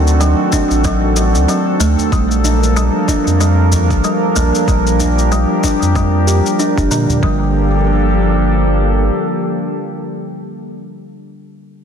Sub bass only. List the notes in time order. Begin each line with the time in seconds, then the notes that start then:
Already playing: D2
0.71 A1
1.35 D2
1.80 D2
2.12 A#1
3.27 F2
3.91 A#1
4.36 A#1
4.68 A#1
5.82 F2
6.78 F1
6.91 A#2
7.09 A#2
7.23 G1